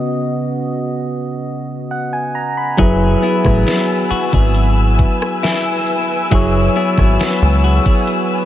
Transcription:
Already playing: synth keys C#3 B3 F#4 D#5
1.91 synth keys F#5
2.13 synth keys G#5
2.35 synth keys A#5
2.57 synth keys B5
2.77 picked electric bass F#1, synth keys F#3 E4 G#4 B4, clean electric guitar F#3 G#4, string section B4 G#5 E6, kick, closed hi-hat
3.22 clean electric guitar B3 E4 G#4, closed hi-hat
3.45 picked electric bass A1, kick, cross-stick
3.67 clean electric guitar B3, snare, closed hi-hat
4.11 clean electric guitar F#4, muted picked electric bass stroke, closed hi-hat
4.33 picked electric bass G#1, clean electric guitar G#4, kick
4.54 closed hi-hat
4.99 kick, closed hi-hat
5.22 cross-stick
5.43 clean electric guitar E4, snare, closed hi-hat
5.87 closed hi-hat
6.31 picked electric bass F#1, synth keys F#3 E4 G#4, clean electric guitar F#3 G#4, kick, closed hi-hat
6.35 synth keys C#5
6.76 clean electric guitar B3 E4 G#4, closed hi-hat
6.98 picked electric bass G#1, kick, cross-stick
7.19 clean electric guitar B3, muted picked electric bass stroke, snare, closed hi-hat
7.42 picked electric bass C#2
7.64 clean electric guitar F#4, closed hi-hat
7.86 clean electric guitar G#4, kick
8.07 closed hi-hat

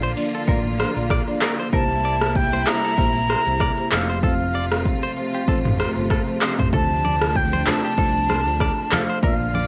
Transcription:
Already playing: fingered electric bass A#1, string section D3 F3 A#3 F4, marimba A#3 D4 F4 D5
0.03 clean electric guitar C5
0.16 marimba A#3 D4 F4 D5, open hi-hat, shaker
0.34 clean electric guitar A4, shaker
0.48 fingered electric bass A1, marimba A#3 D4 F4 D5, clean electric guitar A#4, kick, shaker
0.79 clean electric guitar C5, cross-stick, shaker
0.96 fingered electric bass A#1, marimba A#3 D4 F4 D5, shaker
1.10 clean electric guitar D5, kick, cross-stick, shaker
1.27 marimba A#3 D4 F4 D5
1.42 clean electric guitar A#4, cross-stick, clap, open hi-hat, shaker
1.59 clean electric guitar C5, shaker
1.73 fingered electric bass C2, string section C3 G3 E4, marimba A#3 E4 G4 C5, clean electric guitar A#4, flute A5, kick, shaker
2.04 clean electric guitar D5, shaker
2.21 marimba A#3 E4 G4 C5, cross-stick, shaker
2.35 flute G5, kick, shaker
2.53 clean electric guitar C5
2.67 marimba A#3 E4 G4 C5, flute A#5, cross-stick, clap, open hi-hat, shaker
2.84 clean electric guitar A4, shaker
2.98 fingered electric bass A#1, marimba A#3 E4 G4 C5, clean electric guitar A#4, kick, shaker
3.29 clean electric guitar C5, cross-stick, shaker
3.46 fingered electric bass C2, marimba A#3 E4 G4 C5, shaker
3.60 clean electric guitar D5, kick, cross-stick, shaker
3.77 marimba A#3 E4 G4 C5
3.92 fingered electric bass F1, string section F3 A3 F4, marimba A3 C4 F4 C5, clean electric guitar A4, flute F5, cross-stick, clap, open hi-hat, shaker
4.09 clean electric guitar C5, shaker
4.23 marimba A3 C4 F4 C5, clean electric guitar A4, flute F5, kick, shaker
4.54 clean electric guitar D5, shaker
4.71 marimba A3 C4 F4 C5, cross-stick, shaker
4.85 kick, shaker
5.03 clean electric guitar C5
5.17 marimba A3 C4 F4 C5, shaker
5.34 clean electric guitar G4, shaker
5.48 fingered electric bass A1, marimba A3 C4 F4 C5, clean electric guitar A4, kick, shaker
5.65 mid tom
5.79 clean electric guitar C5, cross-stick, shaker
5.96 fingered electric bass G1, marimba A3 C4 F4 C5, shaker
6.10 clean electric guitar A4, kick, cross-stick, shaker
6.27 marimba A3 C4 F4 C5
6.42 clean electric guitar C5, cross-stick, clap, open hi-hat, shaker
6.59 clean electric guitar C5, kick, mid tom, shaker
6.73 fingered electric bass D2, marimba A3 D4 F4 C5, string section D4, clean electric guitar A4, flute A5, kick, low conga, shaker
7.04 clean electric guitar D5, high conga, shaker
7.21 marimba A3 D4 F4 C5, cross-stick, shaker
7.35 flute G5, kick, shaker
7.53 clean electric guitar C5, high conga
7.66 marimba A3 D4 F4 C5, flute A5, cross-stick, clap, open hi-hat, high conga, low conga, shaker
7.84 clean electric guitar G4, shaker
7.98 fingered electric bass C2, marimba A3 D4 F4 C5, clean electric guitar A4, kick, shaker
8.29 clean electric guitar C5, cross-stick, high conga, shaker
8.46 fingered electric bass D2, marimba A3 D4 F4 C5, shaker
8.60 clean electric guitar D5, kick, cross-stick, shaker
8.91 marimba A3 D4 F4 C5, clean electric guitar A4, flute F5, cross-stick, clap, open hi-hat, high conga, low conga, shaker
9.09 clean electric guitar C5, shaker
9.23 fingered electric bass A#1, string section D3 A#3 F4, marimba A#3 D4 F4 D5, clean electric guitar A#4, flute F5, kick, low conga, shaker
9.54 clean electric guitar D5, high conga, shaker

